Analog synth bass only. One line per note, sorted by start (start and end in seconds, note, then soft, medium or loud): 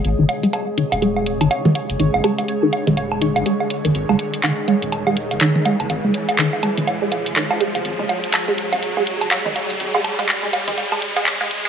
0.04 0.14 G#1 loud
0.19 0.26 F#1 medium
0.92 1.42 D#1 medium
1.41 1.48 G#1 medium
1.90 1.96 F#1 medium
2.00 2.09 G#1 medium
2.14 2.21 F#1 medium
2.87 3.37 D#1 medium
3.36 3.43 G#1 medium
3.85 3.92 F#1 medium
3.95 4.04 G#1 loud
4.09 4.16 F#1 medium
4.82 5.33 D#1 medium
5.31 5.38 G#1 medium
5.80 5.87 F#1 medium
5.90 6.00 G#1 loud
6.04 6.11 F#1 medium
6.78 7.28 D#1 medium
7.26 7.33 G#1 medium
7.75 7.82 F#1 medium
7.85 7.95 G#1 loud
7.99 8.06 F#1 medium
8.73 9.23 D#1 medium
9.21 9.28 G#1 loud
9.70 9.77 F#1 medium
9.80 9.90 G#1 loud
9.94 10.01 F#1 medium
10.68 11.18 D#1 medium
11.16 11.69 G#1 loud